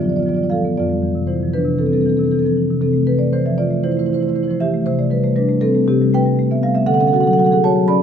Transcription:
Already playing: D3
0.00 F3 D5
0.04 F4
0.09 B3 F4 D5
0.16 F4 D5
0.22 F3 D5
0.27 F4 D5
0.35 F4 D5
0.39 G3 F4
0.44 D5
0.50 F3 A4 F5
0.65 B3
0.77 F2 F4 D5
0.90 G3
1.03 E3
1.15 C3
1.27 E3 E4 C5
1.43 F3
1.54 E3 D4 B4
1.65 C3
1.79 E3 C4 A4
1.86 C4 A4
1.92 G3 C4 A4
2.01 C4 A4
2.06 E3 A4
2.10 C4
2.17 C3 C4 A4
2.24 C4 A4
2.31 E3 C4 A4
2.39 C4 A4
2.45 F3 A4
2.57 E3
2.71 C3
2.81 C3 C4 A4
2.93 A3
3.07 E3 B4
3.19 A3 D5
3.33 E3 C5
3.46 F3 E5
3.58 E3 F4 D5
3.71 A3
3.84 E3 E4 C5
3.91 E4 C5
3.97 A3 E4 C5
4.06 E3 E4 C5
4.13 E4 C5
4.20 A3 E4 C5
4.28 E4 C5
4.35 E3 E4 C5
4.43 E4 C5
4.48 F3 E4 C5
4.60 E3 G4 E5
4.74 A3
4.86 C3 C5
4.99 A3 D5
5.10 G3 B4
5.23 A3 C5
5.36 G3 D4 B4
5.49 A3
5.61 G3 C4 A4
5.75 A3
5.88 C3 C4 G4
6.01 G3
6.14 A3 B4 G5
6.26 G3
6.39 A3
6.51 B3 E5
6.63 G3 F5
6.74 A3 E5
6.86 D3 A4 F#5
6.94 A4 F#5
6.99 C#4 A4 F#5
7.07 A4 F#5
7.13 F#4 A4 F#5
7.21 A4 F#5
7.25 F#3 F#5
7.31 A4 F#5
7.37 F#4 A4 F#5
7.45 A4 F#5
7.51 G#4 A4 F#5
7.64 F#4 C#5 A5
7.76 F#3
7.88 C#4 D5 B5

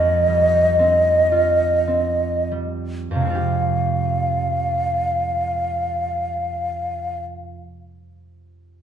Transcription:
Already playing: F2 C4 F4 D#5
0.28 G3
0.79 C4
1.32 F4
1.88 C4
2.51 G3
3.11 F2 F5
3.15 C3
3.21 G#3
3.25 C4
3.30 F4
3.35 G4

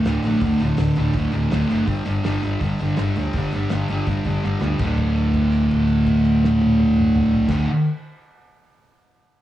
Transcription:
0.04 D1 D2 A2, snare, open hi-hat
0.08 D3
0.23 A1 D2 A2 D3, open hi-hat
0.41 D1 D2 A2 D3, kick, open hi-hat
0.59 D1 D2 A2 D3, open hi-hat
0.77 D1 D2 A2 D3, snare, open hi-hat
0.96 D1 D2 A2 D3, open hi-hat
1.13 D1 D2 A2 D3, kick, open hi-hat
1.32 D1 D2 A2 D3, open hi-hat
1.50 D1 D2 A2 D3, snare, open hi-hat
1.68 F#1 D2 A2 D3, open hi-hat
1.87 G1 G2 D3 G3, kick, open hi-hat
2.05 G1 G2 D3 G3, open hi-hat
2.24 G1 G2 D3 G3, snare, open hi-hat
2.43 G1 G2 D3 G3, open hi-hat
2.60 G1 G2 D3 G3, kick, open hi-hat
2.79 G1 G2 D3 G3, open hi-hat
2.97 G1 G2 D3 G3, snare, open hi-hat
3.16 D2 G2 D3 G3, open hi-hat
3.33 G1 G2 D3 G3, kick, open hi-hat
3.52 G1 G2 D3 G3, open hi-hat
3.69 G1 G2 D3 G3, snare, open hi-hat
3.88 G1 G2 D3 G3, open hi-hat
4.07 G1 G2 D3 G3, kick, open hi-hat
4.24 G1 G2 D3 G3, kick, open hi-hat
4.43 G1 G2 D3 G3, snare
4.61 D2 G2 D3 G3, snare
4.79 D1 D2 A2, kick, crash
4.84 D3
4.97 kick, crash
5.16 crash
5.34 kick, crash
5.52 crash
5.71 kick, crash
5.88 crash
6.06 kick, crash
6.25 crash
6.44 snare
6.61 high tom
6.80 high tom
6.97 mid tom
7.16 mid tom
7.34 floor tom
7.48 D1 D2 A2, kick, snare, crash
7.52 D3

